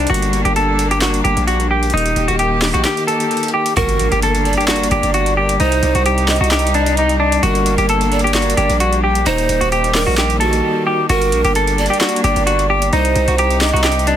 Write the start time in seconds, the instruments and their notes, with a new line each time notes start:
Already playing: string section G3
0.07 808-style bass G1, string section A#3 D4, clean electric guitar F#4, closed hi-hat
0.14 closed hi-hat
0.22 closed hi-hat
0.33 closed hi-hat
0.45 808-style bass G1, clean electric guitar G4, closed hi-hat
0.56 clean electric guitar A4, closed hi-hat
0.79 closed hi-hat
0.91 clean electric guitar G4, closed hi-hat
1.02 clean electric guitar F#4, snare, clap, closed hi-hat
1.14 closed hi-hat
1.24 808-style bass G1, clean electric guitar G4, closed hi-hat
1.37 808-style bass A#1, closed hi-hat
1.47 clean electric guitar F#4, closed hi-hat
1.60 closed hi-hat
1.71 clean electric guitar G4
1.83 closed hi-hat
1.90 808-style bass D#1, string section D#3 A#3 G4, clean electric guitar D#4, closed hi-hat
1.97 closed hi-hat
2.06 closed hi-hat
2.16 808-style bass D#1, closed hi-hat
2.28 808-style bass D#1, clean electric guitar F#4, closed hi-hat
2.39 clean electric guitar G4, closed hi-hat
2.62 snare, clap, open hi-hat
2.74 808-style bass A#1, clean electric guitar F#4, closed hi-hat
2.85 clean electric guitar G4, snare, clap, closed hi-hat
2.97 closed hi-hat
3.07 clean electric guitar A4, closed hi-hat
3.20 closed hi-hat
3.31 closed hi-hat
3.37 closed hi-hat
3.43 closed hi-hat
3.48 closed hi-hat
3.54 clean electric guitar G4
3.66 closed hi-hat
3.77 808-style bass G1, string section G3 A#3 D4, clean electric guitar F#4, pan flute A#4, closed hi-hat, impact
3.89 closed hi-hat
3.99 808-style bass A#1, closed hi-hat
4.12 808-style bass G1, clean electric guitar G4, closed hi-hat
4.22 clean electric guitar A4, closed hi-hat
4.35 closed hi-hat
4.45 pan flute D5, closed hi-hat
4.53 closed hi-hat
4.58 clean electric guitar G4, closed hi-hat
4.68 clean electric guitar F#4, snare, clap, closed hi-hat
4.76 closed hi-hat
4.83 closed hi-hat
4.91 808-style bass G1, clean electric guitar G4, closed hi-hat
5.03 808-style bass G1, closed hi-hat
5.14 clean electric guitar F#4, closed hi-hat
5.26 closed hi-hat
5.37 clean electric guitar G4
5.49 closed hi-hat
5.60 808-style bass C2, string section C3 D#4, clean electric guitar D#4, pan flute C5, closed hi-hat
5.72 closed hi-hat
5.83 808-style bass C2, closed hi-hat
5.95 808-style bass C2, clean electric guitar F#4, closed hi-hat
6.06 clean electric guitar G4, closed hi-hat
6.18 closed hi-hat
6.28 pan flute D#5, snare, clap, closed hi-hat, open hi-hat
6.36 closed hi-hat
6.41 808-style bass C2, clean electric guitar F#4, closed hi-hat
6.51 clean electric guitar G4, snare, clap, closed hi-hat
6.59 closed hi-hat
6.67 closed hi-hat
6.74 clean electric guitar D4, closed hi-hat
6.86 closed hi-hat
6.97 clean electric guitar D#4, closed hi-hat
7.09 closed hi-hat
7.20 clean electric guitar D4
7.32 closed hi-hat
7.43 808-style bass G1, string section A#3 D4, clean electric guitar F#4, pan flute A#4, closed hi-hat
7.55 closed hi-hat
7.66 closed hi-hat
7.78 808-style bass G1, clean electric guitar G4, closed hi-hat
7.89 clean electric guitar A4, closed hi-hat
8.01 closed hi-hat
8.12 pan flute D5, closed hi-hat
8.19 closed hi-hat
8.24 clean electric guitar G4, closed hi-hat
8.35 clean electric guitar F#4, snare, clap, closed hi-hat
8.42 closed hi-hat
8.50 closed hi-hat
8.57 808-style bass G1, clean electric guitar G4, closed hi-hat
8.70 808-style bass A#1, closed hi-hat
8.80 clean electric guitar F#4, closed hi-hat
8.93 closed hi-hat
9.04 clean electric guitar G4
9.15 closed hi-hat
9.26 808-style bass D#1, string section D#3 G3 A#3, clean electric guitar D#4, pan flute C5, closed hi-hat
9.38 closed hi-hat
9.49 808-style bass D#1, closed hi-hat
9.61 808-style bass D#1, clean electric guitar F#4, closed hi-hat
9.72 clean electric guitar G4, closed hi-hat
9.84 closed hi-hat
9.95 pan flute A#4, snare, clap, open hi-hat
10.07 808-style bass A#1, clean electric guitar F#4
10.18 clean electric guitar G4, snare, clap, closed hi-hat
10.30 closed hi-hat
10.40 pan flute F#4, clean electric guitar A4, closed hi-hat
10.53 closed hi-hat
10.87 clean electric guitar G4
11.09 808-style bass G1, string section G3 A#3 D4, clean electric guitar F#4, pan flute A#4, closed hi-hat
11.22 closed hi-hat
11.32 808-style bass A#1, closed hi-hat
11.45 808-style bass G1, clean electric guitar G4, closed hi-hat
11.55 clean electric guitar A4, closed hi-hat
11.67 closed hi-hat
11.78 pan flute D5, closed hi-hat
11.86 closed hi-hat
11.90 clean electric guitar G4, closed hi-hat
12.01 clean electric guitar F#4, snare, clap, closed hi-hat
12.09 closed hi-hat
12.16 closed hi-hat
12.24 808-style bass G1, clean electric guitar G4, closed hi-hat
12.36 808-style bass G1, closed hi-hat
12.47 clean electric guitar F#4, closed hi-hat
12.59 closed hi-hat
12.70 clean electric guitar G4
12.82 closed hi-hat
12.93 808-style bass C2, string section C3 G3 D#4, clean electric guitar D#4, pan flute C5, closed hi-hat
13.05 closed hi-hat
13.16 808-style bass C2, closed hi-hat
13.28 808-style bass C2, clean electric guitar F#4, closed hi-hat
13.38 clean electric guitar G4, closed hi-hat
13.51 closed hi-hat
13.61 pan flute D#5, snare, clap, closed hi-hat, open hi-hat
13.69 closed hi-hat
13.73 808-style bass C2, clean electric guitar F#4, closed hi-hat
13.84 clean electric guitar G4, snare, clap, closed hi-hat
13.92 closed hi-hat
13.99 closed hi-hat
14.07 clean electric guitar D4, closed hi-hat